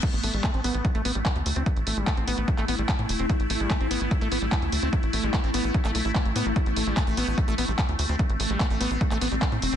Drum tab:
CC |x---------------|----------------|----------------|----------------|
HH |xxoxxxoxxxoxxxox|xxoxxxoxxxoxxxox|xxoxxxoxxxoxxxox|xxoxxxoxxxoxxxox|
CP |----x-------x---|----x----x--x---|----x-------x---|----x----x--x---|
BD |o---o---o---o---|o---o---o---o---|o---o---o---o---|o---o---o---o---|

CC |----------------|----------------|
HH |xxoxxxoxxxoxxxo-|xxoxxxoxxxoxxxox|
CP |----x-------x---|----x----x--x---|
BD |o---o---o---o---|o---o---o---o---|